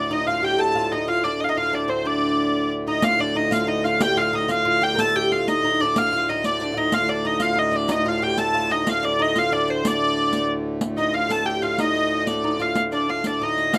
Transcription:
Already playing: harmonium D2 A2, oud D4, hurdy-gurdy D5
0.11 oud D#4, hurdy-gurdy D#5
0.27 oud F4, hurdy-gurdy F5
0.43 oud G4, hurdy-gurdy G5
0.58 oud A4, hurdy-gurdy A5
0.75 oud F4
0.91 oud D#4, hurdy-gurdy D#5
1.08 oud F4, hurdy-gurdy F5
1.23 oud D4, hurdy-gurdy D5
1.40 hurdy-gurdy D#5 F5
1.49 oud D#4, hurdy-gurdy D#5
1.57 oud F4, hurdy-gurdy F5
1.73 oud D4, hurdy-gurdy D5
1.88 oud C4, hurdy-gurdy C5
2.05 oud D4, hurdy-gurdy D5
2.87 oud D#4, hurdy-gurdy D#5
3.02 harmonium D2 A2, oud F4, hurdy-gurdy F5, riq
3.19 oud D4, hurdy-gurdy D5
3.35 oud D#4, hurdy-gurdy D#5
3.51 oud F4, hurdy-gurdy F5, riq
3.67 oud D#4, hurdy-gurdy D#5
3.84 oud F4, hurdy-gurdy F5, riq
4.01 oud G4, hurdy-gurdy G5, riq
4.17 oud F4, hurdy-gurdy F5
4.33 oud D#4, hurdy-gurdy D#5
4.48 oud F4, hurdy-gurdy F5, riq
4.65 oud F4
4.82 oud G4, hurdy-gurdy G5, riq
4.95 oud A4 A#4, riq
5.00 hurdy-gurdy A5
5.16 oud G4, hurdy-gurdy G5
5.32 oud F4, hurdy-gurdy F5
5.48 oud D#4, hurdy-gurdy D#5, riq
5.64 oud D#4
5.80 oud D4, hurdy-gurdy D5, riq
5.96 oud F4, hurdy-gurdy F5, riq
6.12 oud F4, riq
6.29 oud D#4, hurdy-gurdy D#5
6.44 oud D4, hurdy-gurdy D5, riq
6.60 oud D4, hurdy-gurdy D5, riq
6.74 oud D#4 F4, hurdy-gurdy D#5
6.92 harmonium D2 A2, oud F4, hurdy-gurdy F5, riq
7.09 oud D4, hurdy-gurdy D5
7.25 oud D#4, hurdy-gurdy D#5
7.40 oud F4, hurdy-gurdy F5, riq
7.55 oud D#4, hurdy-gurdy D#5
7.71 oud D4, riq
7.76 hurdy-gurdy D5
7.88 oud D#4, hurdy-gurdy D#5, riq
8.06 oud F4, hurdy-gurdy F5
8.22 oud G4, hurdy-gurdy G5
8.38 oud A4, hurdy-gurdy A5, riq
8.54 oud F4
8.70 oud D#4, hurdy-gurdy D#5, riq
8.86 oud F4, hurdy-gurdy F5, riq
9.03 oud D4, hurdy-gurdy D5
9.20 oud D#4, hurdy-gurdy D#5
9.35 oud F4, hurdy-gurdy F5, riq
9.52 oud D4, hurdy-gurdy D5
9.68 hurdy-gurdy C5, riq
9.85 oud D4, hurdy-gurdy D5, riq
10.33 riq
10.81 harmonium D2 A2, riq
10.97 oud D#4, hurdy-gurdy D#5, riq
11.14 oud F4, hurdy-gurdy F5
11.29 oud A4, hurdy-gurdy A5, riq
11.45 oud G4, hurdy-gurdy G5
11.62 oud F4, hurdy-gurdy F5, riq
11.78 oud D#4, hurdy-gurdy D#5, riq
11.95 riq
12.20 hurdy-gurdy D#5
12.27 oud D4, hurdy-gurdy D5, riq
12.44 oud D#4
12.60 oud F4, hurdy-gurdy F5, riq
12.75 riq
12.92 oud D4, hurdy-gurdy D5, riq
13.09 oud F4, hurdy-gurdy F5
13.24 oud D4, hurdy-gurdy D5, riq
13.42 oud D#4, hurdy-gurdy D#5
13.58 riq
13.73 oud F4, hurdy-gurdy F5, riq

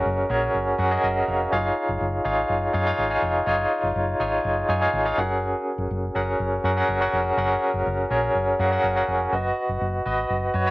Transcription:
Already playing: tine electric piano C#4 F#4 G#4 A#4 C#5 D#5 F#5
0.05 fingered electric bass F#1
0.30 fingered electric bass A#1, tine electric piano C#4 F#4 G#4 A#4 C#5
0.54 fingered electric bass F#1
0.78 fingered electric bass F#2, tine electric piano C#4 F#4 G#4 A#4 F#5
0.91 tine electric piano C#4 F#4 G#4 A#4 D#5
1.03 fingered electric bass F#1, tine electric piano D#5 G#5
1.28 fingered electric bass F1, tine electric piano F5
1.51 fingered electric bass F#1, tine electric piano D#4 F4 G#4 C#5 F5
1.89 fingered electric bass F#1
2.01 fingered electric bass F#1
2.25 fingered electric bass G#1, tine electric piano D#4 F4 G#4 C#5 F5
2.50 fingered electric bass F#1
2.73 fingered electric bass F#2, tine electric piano D#4 F4 G#4 C#5 F5
2.86 tine electric piano D#4 F4 G#4 C#5 F5
2.98 fingered electric bass G#1
3.10 tine electric piano D#4 F4 G#4 C#5 G#5
3.22 fingered electric bass F1
3.47 fingered electric bass F#1, tine electric piano D#4 F4 G#4 C#5 G#5
3.83 fingered electric bass F#1
3.96 fingered electric bass F#1
4.20 fingered electric bass G#1, tine electric piano D#4 F4 G#4 C#5 G#5
4.45 fingered electric bass F#1
4.68 fingered electric bass F#2, tine electric piano D#4 F4 G#4 C#5 G#5
4.81 tine electric piano D#4 F4 G#4 C#5 F5
4.93 fingered electric bass G#1
5.05 tine electric piano D#4 F4 G#4 C#5 F5
5.18 fingered electric bass F#1, tine electric piano C#4 F#4 G#4 A#4 F#5
5.78 fingered electric bass F#1
5.91 fingered electric bass F#1
6.15 fingered electric bass F#1, tine electric piano C#4 F#4 G#4 A#4 F#5
6.40 fingered electric bass F#1
6.64 fingered electric bass F#2, tine electric piano C#4 F#4 G#4 A#4 F#5
6.76 tine electric piano C#4 F#4 G#4 A#4 F#5
6.88 fingered electric bass F#1
7.01 tine electric piano C#4 F#4 G#4 A#4 F#5
7.13 fingered electric bass F1
7.37 fingered electric bass F#1, tine electric piano C#4 F#4 G#4 A#4 F#5
7.74 fingered electric bass F#1
7.86 fingered electric bass F#1
8.10 fingered electric bass A#1, tine electric piano C#4 F#4 G#4 A#4 C#5
8.35 fingered electric bass F#1
8.59 fingered electric bass F#2, tine electric piano C#4 F#4 G#4 A#4 F5 F#5
8.71 tine electric piano C#4 F#4 G#4 A#4 F#5
8.83 fingered electric bass F#1, tine electric piano F#5
8.96 tine electric piano C#4 F#4 G#4 A#4 F#5
9.08 fingered electric bass F1, tine electric piano G#5
9.32 fingered electric bass F#1, tine electric piano F#4 B4 D#5
9.69 fingered electric bass F#1
9.81 fingered electric bass F#1
10.05 fingered electric bass G#1, tine electric piano F#4 B4 D#5
10.30 fingered electric bass F#1
10.54 fingered electric bass F#2, tine electric piano F#4 B4 C#5
10.66 tine electric piano F#4 B4 C#5

